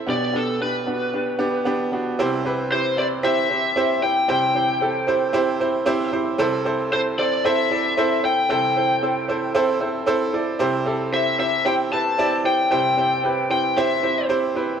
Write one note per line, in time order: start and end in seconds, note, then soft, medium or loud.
0.00 0.10 E4 medium
0.07 2.14 B1 medium
0.07 2.14 B2 medium
0.07 0.30 B3 medium
0.07 0.31 D4 medium
0.07 0.31 G4 medium
0.07 0.36 D5 medium
0.33 0.57 B3 medium
0.33 0.57 D4 medium
0.33 0.57 G4 medium
0.33 0.60 A4 medium
0.60 0.83 B3 medium
0.60 0.84 D4 medium
0.60 0.84 G4 medium
0.60 1.89 B4 medium
0.87 1.10 B3 medium
0.87 1.10 D4 medium
0.87 1.10 F#4 medium
1.14 1.36 B3 medium
1.14 1.37 D4 medium
1.14 1.37 G4 medium
1.39 1.62 B3 medium
1.39 1.62 D4 medium
1.39 1.63 G4 loud
1.65 1.89 B3 loud
1.65 1.89 D4 medium
1.65 1.89 G4 loud
1.65 1.90 B5 medium
1.92 2.15 B3 medium
1.92 2.15 D4 medium
1.92 2.16 F#4 medium
1.92 2.17 G5 medium
2.19 4.25 C2 medium
2.19 4.25 C3 medium
2.19 2.42 C4 loud
2.19 2.42 E4 loud
2.19 2.42 G4 loud
2.19 2.42 C5 loud
2.45 2.68 C4 medium
2.45 2.68 E4 medium
2.45 2.68 G4 medium
2.45 2.68 B4 loud
2.71 2.94 C4 medium
2.71 2.94 E4 medium
2.71 2.94 G4 medium
2.71 2.99 C5 medium
2.71 2.95 C5 medium
2.97 3.20 C4 medium
2.97 3.20 E4 medium
2.97 3.21 G4 medium
2.97 3.21 C5 medium
2.97 3.05 D5 medium
3.23 3.46 C4 loud
3.23 3.47 E4 medium
3.23 3.47 G4 loud
3.23 3.47 C5 loud
3.23 4.05 E5 loud
3.50 3.73 C4 medium
3.50 3.73 E4 medium
3.50 3.73 G4 medium
3.50 3.74 C5 medium
3.76 3.99 C4 loud
3.76 3.99 E4 medium
3.76 4.00 G4 medium
3.76 4.00 C5 loud
4.02 4.25 C4 medium
4.02 4.25 E4 medium
4.02 4.26 G4 medium
4.02 4.26 C5 medium
4.02 4.29 G5 medium
4.28 6.35 C2 medium
4.28 6.35 C3 medium
4.28 4.52 C4 medium
4.28 4.52 E4 medium
4.28 4.52 G4 medium
4.28 4.52 C5 loud
4.28 6.10 G5 loud
4.55 4.78 C4 medium
4.55 4.78 E4 medium
4.55 4.78 G4 medium
4.55 4.78 C5 medium
4.81 5.04 C4 medium
4.81 5.04 E4 medium
4.81 5.05 G4 medium
4.81 5.05 A4 medium
5.07 5.30 C4 medium
5.07 5.31 E4 medium
5.07 5.31 G4 medium
5.07 5.31 C5 loud
5.33 5.57 C4 loud
5.33 5.57 E4 loud
5.33 5.57 G4 loud
5.33 5.57 C5 loud
5.60 5.83 C4 medium
5.60 5.83 E4 medium
5.60 5.84 G4 medium
5.60 5.84 C5 medium
5.86 6.09 C4 loud
5.86 6.09 E4 loud
5.86 6.10 G4 loud
5.86 6.10 C5 loud
6.12 6.36 C4 medium
6.12 6.36 E4 medium
6.12 6.36 G4 medium
6.12 6.36 C5 loud
6.38 8.46 C2 medium
6.38 8.46 C3 medium
6.38 6.62 C4 loud
6.38 6.62 E4 loud
6.38 6.62 A4 loud
6.38 6.62 C5 loud
6.65 6.88 C4 medium
6.65 6.89 E4 medium
6.65 6.89 A4 medium
6.65 6.89 C5 loud
6.92 7.15 C4 medium
6.92 7.15 E4 medium
6.92 7.15 A4 medium
6.92 7.15 C5 medium
6.92 7.00 C5 medium
7.18 7.41 C4 medium
7.18 7.41 E4 medium
7.18 7.42 A4 medium
7.18 7.42 C5 medium
7.18 7.46 D5 medium
7.45 7.68 C4 loud
7.45 7.68 E4 medium
7.45 7.68 A4 loud
7.45 7.68 C5 loud
7.45 8.27 E5 loud
7.71 7.94 C4 medium
7.71 7.94 E4 medium
7.71 7.94 A4 medium
7.71 7.94 D5 medium
7.97 8.20 C4 loud
7.97 8.20 E4 loud
7.97 8.21 A4 medium
7.97 8.21 C5 loud
8.23 8.47 C4 medium
8.23 8.47 E4 medium
8.23 8.47 A4 medium
8.23 8.47 C5 medium
8.23 8.50 G5 loud
8.49 10.56 C2 medium
8.49 10.56 C3 medium
8.49 8.73 C4 loud
8.49 8.73 E4 medium
8.49 8.73 A4 medium
8.49 8.73 C5 loud
8.49 10.31 G5 loud
8.76 8.99 C4 medium
8.76 8.99 E4 medium
8.76 8.99 A4 medium
8.76 9.00 C5 medium
9.02 9.26 C4 medium
9.02 9.26 E4 medium
9.02 9.26 A4 medium
9.02 9.26 C5 medium
9.28 9.52 C4 medium
9.28 9.52 E4 medium
9.28 9.52 A4 medium
9.28 9.52 C5 loud
9.55 9.78 C4 loud
9.55 9.78 E4 loud
9.55 9.78 A4 loud
9.55 9.79 C5 loud
9.80 10.04 C4 medium
9.80 10.04 E4 medium
9.80 10.04 A4 medium
9.80 10.04 C5 medium
10.06 10.30 C4 loud
10.06 10.30 E4 loud
10.06 10.31 A4 loud
10.06 10.31 C5 loud
10.33 10.57 C4 medium
10.33 10.57 E4 medium
10.33 10.57 A4 medium
10.33 10.57 D5 medium
10.59 12.67 C2 medium
10.59 12.67 C3 medium
10.59 10.83 C4 loud
10.59 10.83 E4 loud
10.59 10.84 G4 loud
10.59 10.83 C5 loud
10.86 11.09 C4 medium
10.86 11.10 E4 medium
10.86 11.10 G4 medium
10.86 11.10 A4 medium
11.12 11.36 C4 medium
11.12 11.36 E4 medium
11.12 11.36 G4 medium
11.12 11.36 C5 medium
11.12 11.39 E5 medium
11.39 11.62 C4 medium
11.39 11.62 E4 medium
11.39 11.63 G4 medium
11.39 11.63 C5 medium
11.39 11.67 E5 medium
11.65 11.88 C4 loud
11.65 11.89 E4 medium
11.65 11.89 G4 loud
11.65 11.89 C5 loud
11.65 11.73 G5 loud
11.92 12.15 C4 medium
11.92 12.15 E4 medium
11.92 12.16 G4 medium
11.92 12.16 B4 medium
11.92 12.41 A5 loud
12.18 12.41 C4 loud
12.18 12.42 E4 loud
12.18 12.42 G4 medium
12.18 12.42 D5 loud
12.44 12.68 C4 medium
12.44 12.68 E4 medium
12.44 12.68 G4 medium
12.44 12.68 C5 medium
12.44 12.71 G5 medium
12.71 14.78 C2 medium
12.71 14.78 C3 medium
12.71 12.94 C4 medium
12.71 12.94 E4 medium
12.71 12.94 G4 medium
12.71 12.95 C5 loud
12.71 13.50 G5 loud
12.97 13.20 C4 medium
12.97 13.21 E4 medium
12.97 13.21 G4 medium
12.97 13.21 C5 medium
13.24 13.47 C4 medium
13.24 13.47 E4 medium
13.24 13.47 G4 medium
13.24 13.47 B4 medium
13.50 13.73 C4 medium
13.50 13.73 E4 medium
13.50 13.73 G4 medium
13.50 13.73 C5 medium
13.50 13.78 G5 medium
13.77 14.00 C4 loud
13.77 14.00 E4 loud
13.77 14.00 G4 medium
13.77 14.00 C5 loud
13.77 14.26 E5 medium
14.03 14.26 C4 medium
14.03 14.26 E4 medium
14.03 14.26 G4 medium
14.03 14.26 C5 medium
14.29 14.52 C4 loud
14.29 14.52 E4 medium
14.29 14.53 G4 medium
14.29 14.53 C5 loud
14.56 14.79 C4 medium
14.56 14.79 E4 medium
14.56 14.79 G4 medium
14.56 14.79 B4 medium